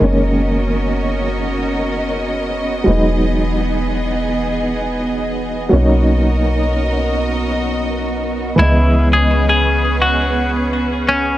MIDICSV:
0, 0, Header, 1, 6, 480
1, 0, Start_track
1, 0, Tempo, 714286
1, 9, Time_signature, 4, 2, 24, 8
1, 7647, End_track
2, 0, Start_track
2, 0, Title_t, "String section"
2, 0, Program_c, 0, 48
2, 4, Note_on_c, 0, 61, 72
2, 4, Note_on_c, 0, 75, 75
2, 5, Note_on_c, 0, 66, 63
2, 5, Note_on_c, 0, 70, 64
2, 1907, Note_off_c, 0, 61, 0
2, 1907, Note_off_c, 0, 66, 0
2, 1907, Note_off_c, 0, 70, 0
2, 1924, Note_on_c, 0, 59, 74
2, 1925, Note_on_c, 0, 68, 65
2, 1927, Note_on_c, 0, 52, 66
2, 3820, Note_off_c, 0, 75, 0
2, 3827, Note_off_c, 0, 59, 0
2, 3827, Note_off_c, 0, 68, 0
2, 3828, Note_off_c, 0, 52, 0
2, 3845, Note_on_c, 0, 70, 67
2, 3846, Note_on_c, 0, 66, 64
2, 3847, Note_on_c, 0, 75, 84
2, 5747, Note_off_c, 0, 70, 0
2, 5748, Note_off_c, 0, 66, 0
2, 5749, Note_off_c, 0, 75, 0
2, 5771, Note_on_c, 0, 71, 65
2, 5772, Note_on_c, 0, 61, 72
2, 5775, Note_on_c, 0, 68, 63
2, 7647, Note_off_c, 0, 61, 0
2, 7647, Note_off_c, 0, 68, 0
2, 7647, Note_off_c, 0, 71, 0
2, 7647, End_track
3, 0, Start_track
3, 0, Title_t, "Clean electric guitar"
3, 0, Program_c, 1, 27
3, 5774, Note_on_c, 1, 64, 84
3, 6101, Note_off_c, 1, 64, 0
3, 6137, Note_on_c, 1, 68, 84
3, 6351, Note_off_c, 1, 68, 0
3, 6380, Note_on_c, 1, 68, 78
3, 6696, Note_off_c, 1, 68, 0
3, 6731, Note_on_c, 1, 66, 81
3, 7060, Note_off_c, 1, 66, 0
3, 7450, Note_on_c, 1, 61, 78
3, 7647, Note_off_c, 1, 61, 0
3, 7647, End_track
4, 0, Start_track
4, 0, Title_t, "Synth drone"
4, 0, Program_c, 2, 95
4, 0, Note_on_c, 2, 59, 76
4, 7647, Note_off_c, 2, 59, 0
4, 7647, End_track
5, 0, Start_track
5, 0, Title_t, "Upright piano"
5, 0, Program_c, 3, 0
5, 0, Note_on_c, 3, 51, 62
5, 0, Note_on_c, 3, 56, 54
5, 12, Note_on_c, 3, 58, 59
5, 26, Note_on_c, 3, 61, 74
5, 1891, Note_off_c, 3, 51, 0
5, 1898, Note_off_c, 3, 56, 0
5, 1904, Note_off_c, 3, 58, 0
5, 1908, Note_on_c, 3, 54, 62
5, 1910, Note_off_c, 3, 61, 0
5, 1922, Note_on_c, 3, 56, 60
5, 1937, Note_on_c, 3, 59, 57
5, 1949, Note_on_c, 3, 63, 70
5, 3811, Note_off_c, 3, 54, 0
5, 3819, Note_off_c, 3, 56, 0
5, 3825, Note_on_c, 3, 54, 67
5, 3826, Note_off_c, 3, 59, 0
5, 3832, Note_off_c, 3, 63, 0
5, 3840, Note_on_c, 3, 58, 56
5, 3854, Note_on_c, 3, 61, 63
5, 3865, Note_on_c, 3, 63, 73
5, 5730, Note_off_c, 3, 54, 0
5, 5738, Note_off_c, 3, 58, 0
5, 5744, Note_off_c, 3, 61, 0
5, 5750, Note_off_c, 3, 63, 0
5, 5751, Note_on_c, 3, 52, 63
5, 5765, Note_on_c, 3, 56, 59
5, 5779, Note_on_c, 3, 59, 55
5, 5792, Note_on_c, 3, 75, 72
5, 7647, Note_off_c, 3, 52, 0
5, 7647, Note_off_c, 3, 56, 0
5, 7647, Note_off_c, 3, 59, 0
5, 7647, Note_off_c, 3, 75, 0
5, 7647, End_track
6, 0, Start_track
6, 0, Title_t, "808-style bass"
6, 0, Program_c, 4, 38
6, 11, Note_on_c, 4, 30, 74
6, 1907, Note_off_c, 4, 30, 0
6, 1930, Note_on_c, 4, 28, 80
6, 3827, Note_off_c, 4, 28, 0
6, 3850, Note_on_c, 4, 35, 74
6, 5747, Note_off_c, 4, 35, 0
6, 5772, Note_on_c, 4, 37, 79
6, 7647, Note_off_c, 4, 37, 0
6, 7647, End_track
0, 0, End_of_file